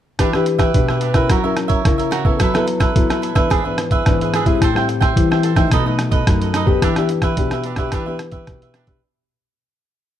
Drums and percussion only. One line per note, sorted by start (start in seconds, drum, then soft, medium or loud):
0.19 kick medium
0.19 cross-stick medium
0.19 closed hi-hat medium
0.33 cross-stick medium
0.46 closed hi-hat soft
0.59 kick medium
0.59 cross-stick medium
0.59 closed hi-hat soft
0.74 kick medium
0.74 closed hi-hat medium
0.89 cross-stick medium
1.01 closed hi-hat soft
1.14 kick medium
1.14 cross-stick medium
1.14 closed hi-hat soft
1.30 kick medium
1.30 cross-stick medium
1.30 closed hi-hat medium
1.57 cross-stick medium
1.57 closed hi-hat medium
1.70 kick medium
1.70 closed hi-hat soft
1.85 kick medium
1.85 cross-stick medium
1.85 closed hi-hat medium
2.00 closed hi-hat soft
2.12 cross-stick medium
2.12 closed hi-hat soft
2.25 kick medium
2.40 kick medium
2.40 cross-stick medium
2.40 closed hi-hat medium
2.55 cross-stick medium
2.55 closed hi-hat soft
2.68 closed hi-hat soft
2.80 kick medium
2.80 cross-stick medium
2.80 closed hi-hat soft
2.96 kick medium
2.96 closed hi-hat medium
3.10 cross-stick medium
3.10 closed hi-hat soft
3.23 closed hi-hat soft
3.36 kick medium
3.36 cross-stick medium
3.36 closed hi-hat soft
3.51 kick medium
3.51 cross-stick medium
3.51 closed hi-hat medium
3.78 cross-stick medium
3.78 closed hi-hat soft
3.91 kick medium
3.91 closed hi-hat soft
4.06 kick medium
4.06 cross-stick medium
4.06 closed hi-hat medium
4.21 closed hi-hat soft
4.34 cross-stick medium
4.34 closed hi-hat soft
4.46 kick medium
4.46 closed hi-hat soft
4.61 kick medium
4.61 cross-stick medium
4.61 closed hi-hat medium
4.76 cross-stick medium
4.89 closed hi-hat soft
5.01 kick medium
5.01 cross-stick medium
5.01 closed hi-hat soft
5.17 kick medium
5.17 closed hi-hat medium
5.32 cross-stick medium
5.43 closed hi-hat soft
5.56 kick medium
5.56 cross-stick medium
5.56 closed hi-hat soft
5.71 kick medium
5.71 cross-stick medium
5.71 closed hi-hat medium
5.99 cross-stick medium
5.99 closed hi-hat medium
6.12 kick medium
6.12 closed hi-hat soft
6.27 kick medium
6.27 cross-stick medium
6.27 closed hi-hat medium
6.42 closed hi-hat soft
6.54 cross-stick medium
6.54 closed hi-hat medium
6.67 kick medium
6.82 kick medium
6.82 cross-stick medium
6.82 closed hi-hat medium
6.96 cross-stick medium
6.96 closed hi-hat soft
7.09 closed hi-hat soft
7.22 kick medium
7.22 cross-stick medium
7.22 closed hi-hat soft
7.37 kick medium
7.37 closed hi-hat medium
7.51 cross-stick medium
7.51 closed hi-hat soft
7.64 closed hi-hat soft
7.76 kick medium
7.76 cross-stick medium
7.76 closed hi-hat soft
7.92 kick medium
7.92 cross-stick medium
7.92 closed hi-hat medium
8.19 cross-stick medium
8.19 closed hi-hat medium
8.32 kick medium
8.32 closed hi-hat soft
8.47 kick medium
8.47 cross-stick medium
8.47 closed hi-hat medium
8.62 closed hi-hat soft
8.74 cross-stick medium
8.74 closed hi-hat soft
8.87 kick medium
8.87 closed hi-hat soft